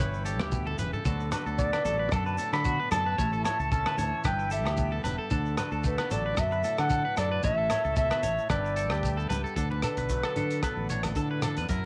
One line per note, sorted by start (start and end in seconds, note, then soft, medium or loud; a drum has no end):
0.00 0.40 G1 loud
0.00 1.02 G2 medium
0.00 1.05 E3 medium
0.00 1.02 E4 medium
0.00 0.24 B4 medium
0.00 0.52 C#5 loud
0.00 1.03 E5 medium
0.00 1.04 G5 medium
0.00 1.04 B5 medium
0.14 shekere soft
0.25 1.02 G4 medium
0.25 0.39 A4 medium
0.25 closed hi-hat medium
0.25 shekere medium
0.40 0.76 D2 medium
0.40 0.65 G4 medium
0.40 cross-stick medium
0.40 high conga medium
0.52 0.77 B2 medium
0.52 kick medium
0.52 high conga medium
0.52 shekere medium
0.67 0.78 A4 medium
0.67 high conga medium
0.77 0.92 E1 medium
0.77 1.05 C#3 medium
0.77 0.92 B4 medium
0.77 closed hi-hat medium
0.77 low conga medium
0.77 shekere medium
0.93 1.04 A4 medium
0.93 low conga medium
0.93 shekere soft
1.05 1.30 D2 loud
1.05 3.15 D3 medium
1.05 1.84 F#3 medium
1.05 1.58 B3 medium
1.05 2.11 D4 medium
1.05 1.31 F#4 medium
1.05 1.31 A4 medium
1.05 3.16 D5 medium
1.05 3.16 F#5 medium
1.05 3.16 B5 medium
1.05 kick medium
1.05 shekere loud
1.20 shekere soft
1.32 3.18 F#4 medium
1.32 1.45 B4 medium
1.32 cross-stick medium
1.32 closed hi-hat soft
1.32 low conga medium
1.32 low agogo medium
1.32 shekere medium
1.46 1.71 D2 medium
1.46 1.72 A4 medium
1.46 shekere soft
1.58 2.65 B3 medium
1.58 2.14 D5 loud
1.58 kick loud
1.58 shekere loud
1.73 1.84 B4 medium
1.73 cross-stick medium
1.73 high conga medium
1.73 low agogo medium
1.85 2.10 A1 medium
1.85 3.15 F#3 medium
1.85 1.99 A4 medium
1.85 closed hi-hat medium
1.85 low conga medium
1.85 shekere medium
1.99 2.11 B4 medium
2.11 2.37 F#2 medium
2.11 2.91 D4 medium
2.11 2.25 A4 medium
2.11 2.52 A5 loud
2.11 kick medium
2.11 cross-stick medium
2.11 low agogo medium
2.11 shekere medium
2.26 2.38 B4 medium
2.26 shekere soft
2.38 3.15 A2 medium
2.38 2.64 A4 medium
2.38 closed hi-hat medium
2.38 shekere medium
2.53 2.78 D3 medium
2.53 2.89 B5 loud
2.53 cross-stick medium
2.53 low agogo medium
2.53 shekere soft
2.65 3.16 B3 medium
2.65 2.78 F#4 medium
2.65 kick medium
2.65 shekere medium
2.80 2.91 B4 medium
2.91 3.17 F#2 medium
2.91 3.16 D4 medium
2.91 3.05 A4 medium
2.91 3.41 A5 loud
2.91 cross-stick medium
2.91 closed hi-hat medium
2.91 high conga medium
2.91 low conga medium
2.91 low agogo medium
2.91 shekere medium
3.06 3.18 B4 medium
3.18 3.43 A1 loud
3.18 4.22 A2 medium
3.18 4.23 E4 medium
3.18 3.32 C#5 medium
3.18 5.29 E5 medium
3.18 4.23 A5 medium
3.18 4.23 C#6 medium
3.18 kick medium
3.18 shekere loud
3.33 3.44 A4 medium
3.33 shekere soft
3.44 3.59 C#5 medium
3.44 3.69 A5 loud
3.44 muted clean electric guitar stroke medium
3.44 cross-stick medium
3.44 closed hi-hat medium
3.44 low conga medium
3.44 low agogo medium
3.44 shekere medium
3.59 3.84 C#2 medium
3.59 3.70 A4 medium
3.59 shekere soft
3.72 4.22 C#4 medium
3.72 3.85 A4 medium
3.72 4.21 A5 medium
3.72 kick medium
3.72 shekere loud
3.86 3.98 B4 medium
3.86 cross-stick medium
3.86 high conga medium
3.86 low agogo medium
3.98 4.11 D2 medium
3.98 5.04 E3 medium
3.98 4.23 C#5 medium
3.98 closed hi-hat medium
3.98 low conga medium
3.98 shekere medium
4.24 4.65 G1 loud
4.24 5.28 G2 medium
4.24 4.39 C#4 medium
4.24 4.50 B4 medium
4.24 5.30 G5 medium
4.24 4.50 G5 loud
4.24 7.41 B5 medium
4.24 kick medium
4.24 cross-stick medium
4.24 low agogo medium
4.24 shekere loud
4.39 5.31 E4 medium
4.39 shekere soft
4.51 5.28 G4 medium
4.51 4.65 A4 medium
4.51 5.01 E5 medium
4.51 closed hi-hat medium
4.51 shekere medium
4.65 5.02 D2 medium
4.65 4.90 G4 medium
4.65 cross-stick medium
4.65 low agogo medium
4.65 shekere soft
4.77 5.28 B3 medium
4.77 kick medium
4.77 shekere medium
4.92 5.04 A4 medium
5.04 5.17 E1 medium
5.04 5.18 B4 medium
5.04 muted clean electric guitar stroke medium
5.04 closed hi-hat medium
5.04 high conga medium
5.04 low conga medium
5.04 low agogo medium
5.04 shekere medium
5.18 5.30 A4 medium
5.31 5.56 D2 loud
5.31 7.40 D3 medium
5.31 6.37 D4 medium
5.31 5.56 A4 medium
5.31 7.42 D5 medium
5.31 7.42 F#5 medium
5.31 kick medium
5.31 shekere medium
5.46 shekere soft
5.57 7.44 F#4 medium
5.57 5.71 B4 medium
5.57 cross-stick medium
5.57 closed hi-hat medium
5.57 low conga medium
5.57 low agogo medium
5.57 shekere medium
5.72 5.97 D2 medium
5.72 5.97 A4 medium
5.72 shekere soft
5.84 5.99 A3 medium
5.84 6.14 B4 medium
5.84 kick loud
5.84 shekere loud
5.98 6.90 B3 medium
5.98 6.10 B4 medium
5.98 cross-stick medium
5.98 high conga medium
5.98 low agogo medium
6.11 6.36 A1 medium
6.11 7.41 F#3 medium
6.11 6.25 A4 medium
6.11 6.41 D5 loud
6.11 closed hi-hat medium
6.11 low conga medium
6.11 shekere medium
6.26 6.37 B4 medium
6.37 6.62 F#2 loud
6.37 6.79 E5 loud
6.37 muted clean electric guitar stroke medium
6.37 kick loud
6.37 cross-stick medium
6.37 low agogo medium
6.37 shekere loud
6.51 6.64 B4 medium
6.51 shekere soft
6.64 7.41 A2 medium
6.64 6.89 A4 medium
6.64 closed hi-hat medium
6.64 shekere medium
6.78 7.03 D3 medium
6.78 7.20 F#5 loud
6.78 cross-stick medium
6.78 low agogo medium
6.78 shekere soft
6.90 7.04 A4 medium
6.90 kick medium
6.90 shekere loud
7.05 7.16 B4 medium
7.17 7.42 F#2 loud
7.17 7.41 D4 medium
7.17 7.31 A4 medium
7.17 7.44 D5 loud
7.17 cross-stick medium
7.17 closed hi-hat medium
7.17 low agogo medium
7.17 shekere medium
7.31 7.43 B4 medium
7.43 7.69 A1 loud
7.43 8.21 A2 medium
7.43 8.47 E4 medium
7.43 8.49 C#5 medium
7.43 7.57 C#5 medium
7.43 9.55 E5 medium
7.43 7.93 E5 loud
7.43 8.49 A5 medium
7.43 kick medium
7.43 low conga medium
7.43 shekere loud
7.58 7.69 A4 medium
7.70 8.47 A4 medium
7.70 7.84 C#5 medium
7.70 cross-stick medium
7.70 closed hi-hat medium
7.70 low conga medium
7.70 low agogo medium
7.70 shekere medium
7.84 8.10 C#2 medium
7.84 7.95 A4 medium
7.84 shekere soft
7.96 8.23 B2 medium
7.96 8.10 A4 medium
7.96 8.47 E5 loud
7.96 kick medium
7.96 shekere loud
8.10 8.23 B4 medium
8.10 cross-stick medium
8.10 high conga medium
8.10 low agogo medium
8.10 shekere soft
8.23 8.37 A1 medium
8.23 8.49 A2 medium
8.23 8.49 C#5 medium
8.23 closed hi-hat medium
8.23 high conga medium
8.23 low conga medium
8.23 shekere medium
8.38 shekere soft
8.50 8.91 G1 medium
8.50 9.54 G2 medium
8.50 8.64 C#4 medium
8.50 9.55 B4 medium
8.50 8.75 B4 medium
8.50 9.26 D5 medium
8.50 9.55 G5 medium
8.50 kick medium
8.50 cross-stick medium
8.50 high conga medium
8.50 low agogo medium
8.50 shekere loud
8.64 9.57 E4 soft
8.64 shekere soft
8.76 8.90 A4 medium
8.76 muted clean electric guitar stroke medium
8.76 closed hi-hat medium
8.76 shekere medium
8.90 9.28 D2 medium
8.90 9.16 G4 medium
8.90 cross-stick medium
8.90 low agogo medium
8.90 shekere soft
9.03 9.18 A3 medium
9.03 kick medium
9.03 shekere loud
9.17 9.57 B3 medium
9.17 9.29 A4 medium
9.17 shekere soft
9.29 9.44 C#2 medium
9.29 9.54 G3 medium
9.29 9.43 B4 medium
9.29 closed hi-hat medium
9.29 high conga medium
9.29 low conga medium
9.29 low agogo medium
9.29 shekere medium
9.44 9.55 A4 medium
9.44 shekere soft
9.56 9.82 D2 loud
9.56 11.67 D3 medium
9.56 10.36 D4 medium
9.56 9.70 A4 medium
9.56 11.68 B4 medium
9.56 11.68 D5 medium
9.56 11.85 F#5 medium
9.56 kick medium
9.56 closed hi-hat soft
9.56 shekere medium
9.71 9.83 B4 medium
9.71 high conga medium
9.82 9.97 A4 medium
9.82 10.64 B4 medium
9.82 cross-stick medium
9.82 closed hi-hat medium
9.82 high conga medium
9.82 low agogo medium
9.82 shekere loud
9.97 10.23 B1 medium
9.97 10.23 B4 medium
9.97 kick medium
9.97 closed hi-hat soft
10.09 11.73 F#3 medium
10.09 10.25 A3 medium
10.09 kick medium
10.09 closed hi-hat soft
10.09 shekere medium
10.23 10.63 B3 soft
10.23 10.36 A4 medium
10.23 cross-stick medium
10.23 low agogo medium
10.36 10.61 D3 medium
10.36 10.90 D4 medium
10.36 10.62 A4 medium
10.36 closed hi-hat soft
10.36 low conga medium
10.50 closed hi-hat soft
10.50 shekere soft
10.62 11.17 B3 medium
10.62 10.89 A4 medium
10.62 10.89 B4 medium
10.62 kick medium
10.62 cross-stick medium
10.62 closed hi-hat soft
10.62 low agogo medium
10.62 shekere medium
10.77 11.14 A1 medium
10.89 11.68 A2 medium
10.89 11.42 D4 medium
10.89 11.04 C#5 medium
10.89 closed hi-hat soft
10.89 shekere loud
11.03 muted clean electric guitar stroke medium
11.03 cross-stick medium
11.03 closed hi-hat soft
11.03 high conga medium
11.03 low conga medium
11.03 low agogo medium
11.03 shekere soft
11.15 11.59 D3 loud
11.15 11.30 A4 medium
11.15 kick medium
11.15 closed hi-hat soft
11.15 shekere medium
11.31 11.43 B4 medium
11.42 11.67 D4 medium
11.42 11.57 A4 medium
11.42 cross-stick medium
11.42 closed hi-hat medium
11.42 low conga medium
11.42 low agogo medium
11.42 shekere loud
11.57 11.69 F2 medium
11.57 11.69 B4 medium
11.57 closed hi-hat soft
11.69 11.85 F#2 medium
11.69 11.85 E4 medium
11.69 11.85 A#4 medium
11.69 11.85 E5 medium
11.69 kick medium
11.69 closed hi-hat soft
11.69 shekere medium